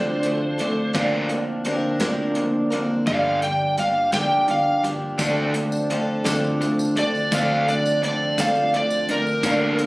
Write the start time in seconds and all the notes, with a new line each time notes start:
Already playing: D3 F3 A3 C4 D4 A4 C5
0.23 D3 A3, closed hi-hat
0.58 D3 A3 C4 D4 A4, closed hi-hat
0.93 D2 D3 F3 A#3 C4 D4 A#4, kick, closed hi-hat
1.29 D3 A#3, closed hi-hat
1.64 D3 F3 A#3 C4 D4 A#4, closed hi-hat
2.00 D2 D3 F3 A#3 C4 D4 A#4, kick, snare, closed hi-hat
2.35 D3 A#3, closed hi-hat
2.70 D3 A#3 C4 D4 A#4, closed hi-hat
3.07 G1 G2 D3 F3 G3 A#3 D4 G4 F5, kick, closed hi-hat
3.42 G2 D3 G5, closed hi-hat
3.77 G2 D3 F3 A#3 D4 G4 F5, closed hi-hat
4.12 G2 D3 F3 A#3 D4 G4 G5, kick, snare, closed hi-hat
4.48 G2 D3 F5, closed hi-hat
4.83 G2 D3 F3 A#3 D4 G4, closed hi-hat
5.18 D2 D3 F3 A3 C4 D4 A4, kick, closed hi-hat, tambourine
5.54 D3 A3, closed hi-hat
5.72 tambourine
5.90 D3 F3 A3 C4 D4 A4, closed hi-hat
6.24 D2 D3 F3 A3 C4 D4 A4, kick, snare, closed hi-hat, tambourine
6.44 tambourine
6.61 D3 A3, closed hi-hat
6.79 tambourine
6.95 D3 A3 C4 D4 A4 D5, closed hi-hat
7.15 tambourine
7.32 D2 D3 F3 A3 C4 D4 A4 F5, kick, closed hi-hat, tambourine
7.67 D3 A3 D5, closed hi-hat
7.85 tambourine
8.02 D3 F3 A3 C4 D4 A4 D5, closed hi-hat
8.38 D3 F3 A3 C4 D4 A4 F5, kick, snare, closed hi-hat, tambourine
8.55 tambourine
8.74 D3 A3 D5, closed hi-hat
8.90 tambourine
9.09 D3 A3 C4 D4 A#4, closed hi-hat
9.27 tambourine
9.43 D2 D3 F3 A#3 C4 D4 A#4, kick, closed hi-hat, tambourine
9.79 D3 A#3, closed hi-hat